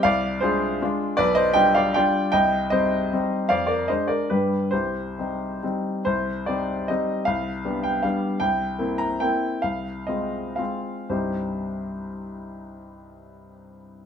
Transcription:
0.03 0.41 C2 medium
0.03 0.40 D5 medium
0.03 0.41 F5 medium
0.40 0.77 G#3 soft
0.40 0.78 D4 soft
0.40 0.78 F4 medium
0.40 0.78 G#4 medium
0.40 0.80 C5 medium
0.82 1.15 G#3 medium
0.82 1.15 D4 medium
0.82 1.15 F4 medium
1.17 1.55 B1 medium
1.17 1.35 B4 medium
1.17 1.36 D5 medium
1.35 1.55 C5 medium
1.35 1.53 D#5 loud
1.53 1.91 G3 soft
1.53 1.91 D4 soft
1.53 1.92 F4 soft
1.53 1.74 D#5 medium
1.53 1.75 G5 medium
1.75 1.94 D5 medium
1.75 1.95 F5 medium
1.94 2.30 G3 soft
1.94 2.30 D4 soft
1.94 2.30 F4 medium
1.94 2.30 D5 medium
1.94 2.30 G5 medium
2.32 2.71 C2 medium
2.32 2.69 D#5 medium
2.32 2.71 G5 medium
2.70 3.08 G3 soft
2.70 3.08 C4 soft
2.70 3.09 D#4 soft
2.70 3.46 C5 medium
2.70 3.49 D#5 medium
3.13 3.46 G3 soft
3.13 3.47 C4 soft
3.13 3.47 D#4 soft
3.49 3.87 F2 medium
3.49 3.65 D5 medium
3.49 3.68 F5 medium
3.67 3.87 A#4 soft
3.67 3.88 D5 medium
3.88 4.27 G#3 soft
3.88 4.27 D4 soft
3.88 4.09 C5 medium
3.88 4.09 D#5 medium
4.08 4.29 A#4 soft
4.08 4.29 D5 medium
4.30 4.71 G2 soft
4.30 4.69 G3 soft
4.30 4.69 D4 soft
4.30 4.69 G4 soft
4.30 4.72 B4 medium
4.71 5.17 C2 soft
4.71 5.59 G4 soft
4.71 5.62 C5 medium
5.19 5.59 G3 soft
5.19 5.59 C4 soft
5.19 5.59 D#4 soft
5.63 6.02 G3 soft
5.63 6.02 C4 soft
5.63 6.03 D#4 soft
6.05 6.47 C2 soft
6.05 6.47 C5 medium
6.46 6.84 G3 soft
6.46 6.85 C4 soft
6.46 6.85 D#4 soft
6.46 6.88 D5 medium
6.88 7.24 G3 soft
6.88 7.24 C4 soft
6.88 7.24 D#4 soft
6.88 7.27 D#5 medium
7.25 7.64 C2 medium
7.25 7.84 F5 medium
7.64 7.99 G3 soft
7.64 8.00 B3 soft
7.64 8.00 D4 soft
7.83 8.03 G5 medium
8.03 8.37 G3 soft
8.03 8.37 B3 soft
8.03 8.37 D4 soft
8.03 8.40 F5 medium
8.40 8.78 C2 soft
8.40 8.99 G5 medium
8.79 9.16 A#3 soft
8.79 9.17 C4 soft
8.79 9.17 E4 soft
8.98 9.20 A#5 medium
9.20 9.59 A#3 soft
9.20 9.59 C4 soft
9.20 9.59 E4 soft
9.20 9.62 G5 medium
9.62 10.08 C2 soft
9.62 10.08 F5 medium
10.07 10.55 G#3 soft
10.07 10.55 C4 soft
10.07 10.55 F4 soft
10.07 10.58 D#5 medium
10.56 11.07 G#3 soft
10.56 11.07 C4 soft
10.56 11.07 F4 soft
10.56 11.10 F5 soft
11.10 14.06 C2 soft
11.10 14.06 G2 soft
11.10 14.06 G3 soft
11.10 14.06 C4 soft
11.10 14.06 D#4 soft
11.10 14.06 G4 soft
11.10 14.06 C5 soft

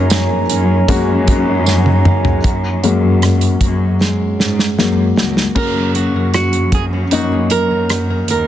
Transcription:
0.00 0.45 F#2 medium
0.00 2.44 F#2 medium
0.00 2.47 C#3 medium
0.00 0.41 G#3 medium
0.00 0.10 A#3 medium
0.00 0.42 A#3 medium
0.00 1.63 A#3 medium
0.00 0.42 C#4 medium
0.00 0.50 C#4 medium
0.00 2.40 D#4 medium
0.00 0.42 F#4 medium
0.00 0.89 F#4 medium
0.00 1.63 A#4 medium
0.00 2.41 C#5 medium
0.00 2.41 G#5 medium
0.00 2.40 A#5 medium
0.10 2.06 A#3 medium
0.10 snare loud
0.10 closed hi-hat medium
0.10 tambourine medium
0.50 0.86 F#2 medium
0.50 1.28 C#4 medium
0.50 closed hi-hat medium
0.88 2.40 F#2 loud
0.88 2.37 G#3 medium
0.88 2.37 A#3 medium
0.88 2.37 C#4 medium
0.88 1.67 F#4 medium
0.88 2.37 F#4 medium
0.88 kick medium
0.88 closed hi-hat medium
1.28 3.22 C#4 medium
1.28 kick medium
1.28 closed hi-hat medium
1.66 2.45 F#4 medium
1.66 snare soft
1.66 tambourine medium
1.86 high tom medium
2.05 2.84 A#3 medium
2.05 mid tom medium
2.25 floor tom medium
2.44 3.57 F#2 medium
2.44 5.54 F#2 medium
2.44 3.61 F#4 medium
2.44 kick loud
2.44 closed hi-hat medium
2.83 3.96 F#3 medium
2.83 3.96 G#3 soft
2.83 4.78 A#3 soft
2.83 3.97 A#3 medium
2.83 closed hi-hat medium
3.22 4.39 C#4 soft
3.22 cross-stick loud
3.22 closed hi-hat medium
3.41 closed hi-hat soft
3.61 4.15 F#2 medium
3.61 5.17 F#4 medium
3.61 kick medium
3.61 closed hi-hat medium
4.01 5.64 G#3 medium
4.01 snare soft
4.39 4.75 G#2 medium
4.39 6.14 C#4 soft
4.39 snare medium
4.59 snare medium
4.78 5.14 F#2 medium
4.78 5.13 F#3 soft
4.78 5.13 G#3 soft
4.78 5.75 A#3 soft
4.78 5.13 A#3 soft
4.78 snare medium
5.17 5.53 C#2 medium
5.17 5.95 F#4 medium
5.17 snare medium
5.37 snare medium
5.55 7.11 F#2 medium
5.55 6.10 F#2 medium
5.55 6.69 C#3 medium
5.55 7.04 A#3 medium
5.55 7.04 C#4 medium
5.55 7.04 F#4 medium
5.55 5.95 A#4 medium
5.55 kick medium
5.55 crash medium
5.76 7.31 A#3 soft
5.95 6.33 F#4 medium
5.95 closed hi-hat medium
6.14 8.25 F#2 medium
6.14 6.52 C#4 medium
6.34 6.70 F#4 medium
6.34 cross-stick medium
6.34 closed hi-hat medium
6.53 6.92 C#4 soft
6.53 closed hi-hat soft
6.72 7.50 F#4 medium
6.72 6.84 G#4 medium
6.72 kick medium
6.72 closed hi-hat medium
6.93 7.70 C#4 soft
7.11 8.47 F#2 medium
7.11 8.47 A#3 medium
7.11 8.47 C#4 medium
7.11 8.47 D#4 medium
7.11 7.51 F#4 medium
7.11 closed hi-hat medium
7.32 8.47 A#3 soft
7.50 7.90 F#4 medium
7.50 8.29 A#4 medium
7.50 closed hi-hat medium
7.71 8.09 C#4 soft
7.90 8.28 F#4 medium
7.90 cross-stick medium
7.90 closed hi-hat medium
8.10 8.47 C#4 soft
8.28 8.47 D#2 medium
8.28 8.47 F#4 medium
8.28 8.47 A#4 medium
8.28 closed hi-hat medium

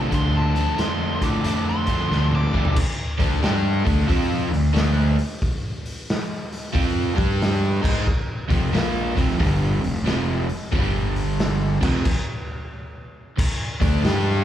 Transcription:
0.00 0.10 A3 medium
0.00 0.11 D4 medium
0.10 0.65 D2 medium
0.10 0.53 D3 medium
0.10 0.54 F3 medium
0.10 0.55 A3 medium
0.10 0.55 D4 loud
0.10 kick loud
0.10 closed hi-hat medium
0.14 0.34 C6 loud
0.37 0.78 A5 medium
0.54 0.76 D3 medium
0.54 0.76 F3 medium
0.54 0.77 A3 medium
0.54 0.77 D4 medium
0.54 closed hi-hat medium
0.77 1.12 F2 medium
0.77 1.20 D3 medium
0.77 1.21 F3 medium
0.77 1.21 A3 medium
0.77 1.21 D4 medium
0.77 1.21 C6 medium
0.77 snare loud
0.77 closed hi-hat medium
1.21 1.40 A2 medium
1.21 1.43 D3 medium
1.21 1.43 F3 medium
1.21 1.44 A3 medium
1.21 1.45 D4 medium
1.21 1.66 D6 medium
1.21 kick medium
1.21 closed hi-hat medium
1.44 1.97 F2 medium
1.44 1.86 D3 medium
1.44 1.86 F3 medium
1.44 1.87 A3 medium
1.44 1.88 D4 medium
1.44 closed hi-hat medium
1.69 2.32 C6 medium
1.87 2.09 D3 medium
1.87 2.10 F3 medium
1.87 2.10 A3 medium
1.87 2.10 D4 medium
1.87 kick medium
1.87 closed hi-hat medium
2.10 2.44 D2 medium
2.10 2.52 D3 medium
2.10 2.52 F3 medium
2.10 2.53 A3 medium
2.10 2.53 D4 medium
2.10 snare medium
2.32 2.77 D6 medium
2.32 mid tom medium
2.53 2.72 F2 medium
2.53 2.75 D3 medium
2.53 2.75 F3 medium
2.53 2.75 A3 medium
2.53 2.75 D4 medium
2.53 kick medium
2.65 floor tom medium
2.76 muted overdriven electric guitar stroke medium
2.76 muted fingered electric bass stroke soft
2.76 kick loud
2.76 crash loud
3.18 3.41 D2 loud
3.18 3.41 D3 medium
3.18 3.41 A3 loud
3.18 3.41 D4 medium
3.18 kick loud
3.18 open hi-hat medium
3.42 3.83 G2 medium
3.42 3.84 G3 medium
3.42 3.84 D4 medium
3.42 3.85 G4 medium
3.42 snare loud
3.42 open hi-hat medium
3.84 4.08 D2 medium
3.84 4.07 D3 medium
3.84 4.08 A3 loud
3.84 4.08 D4 loud
3.84 kick loud
3.84 open hi-hat medium
3.99 snare soft
4.08 4.49 F2 loud
4.08 4.50 F3 medium
4.08 4.50 C4 medium
4.08 4.51 F4 loud
4.08 kick loud
4.08 open hi-hat medium
4.33 snare soft
4.51 4.74 D2 medium
4.51 4.70 D3 medium
4.51 4.70 A3 medium
4.51 open hi-hat medium
4.73 5.15 D2 medium
4.73 5.16 D3 loud
4.73 5.16 A3 medium
4.73 5.16 D4 loud
4.73 snare loud
4.73 open hi-hat medium
5.19 open hi-hat medium
5.42 kick loud
5.42 open hi-hat medium
5.86 open hi-hat medium
6.09 snare loud
6.09 open hi-hat medium
6.52 open hi-hat medium
6.73 7.14 F2 loud
6.73 7.15 F3 loud
6.73 7.15 C4 loud
6.73 7.15 F4 loud
6.73 kick loud
6.73 open hi-hat medium
7.15 7.79 G2 loud
7.15 7.81 G3 loud
7.15 7.81 D4 medium
7.15 7.81 G4 loud
7.15 kick loud
7.19 open hi-hat medium
7.42 snare loud
7.42 open hi-hat medium
7.82 8.05 G#2 loud
7.82 8.05 G#3 medium
7.82 8.05 D#4 medium
7.82 8.05 G#4 loud
7.82 kick loud
7.82 crash loud
8.07 muted overdriven electric guitar stroke medium
8.07 muted fingered electric bass stroke soft
8.07 kick loud
8.49 8.71 F1 loud
8.49 8.71 F2 loud
8.49 8.72 C3 medium
8.49 8.72 F3 loud
8.49 kick loud
8.49 open hi-hat medium
8.72 9.12 A#1 medium
8.72 9.14 A#2 medium
8.72 9.14 F3 medium
8.72 9.15 A#3 loud
8.72 snare loud
8.72 open hi-hat medium
9.15 9.38 F1 medium
9.15 9.38 F2 medium
9.15 9.38 C3 medium
9.15 9.38 F3 loud
9.15 kick loud
9.15 open hi-hat medium
9.30 snare soft
9.38 9.80 G1 loud
9.38 9.80 G2 medium
9.38 9.81 D3 loud
9.38 9.81 G3 loud
9.38 kick loud
9.38 open hi-hat medium
9.81 10.04 F1 medium
9.81 10.00 F2 medium
9.81 10.00 C3 medium
9.81 open hi-hat medium
10.04 10.46 F1 medium
10.04 10.47 F2 loud
10.04 10.47 C3 loud
10.04 10.47 F3 loud
10.04 snare loud
10.04 open hi-hat medium
10.49 open hi-hat medium
10.71 11.78 G1 medium
10.71 11.80 G2 loud
10.71 11.80 D3 loud
10.71 11.81 G3 loud
10.71 kick loud
10.71 open hi-hat medium
11.16 open hi-hat medium
11.39 snare loud
11.39 open hi-hat medium
11.81 12.03 F1 medium
11.81 12.04 F2 medium
11.81 12.04 C3 medium
11.81 12.04 F3 loud
11.81 kick loud
11.81 crash medium
12.05 kick loud
12.05 crash loud
13.38 muted overdriven electric guitar stroke medium
13.38 muted fingered electric bass stroke soft
13.38 kick loud
13.38 crash loud
13.80 14.02 D2 loud
13.80 14.03 D3 medium
13.80 14.03 A3 loud
13.80 14.03 D4 loud
13.80 kick loud
13.80 open hi-hat medium
14.03 14.44 G2 medium
14.03 14.44 G3 medium
14.03 14.44 D4 medium
14.03 14.44 G4 loud
14.03 snare loud
14.03 open hi-hat medium

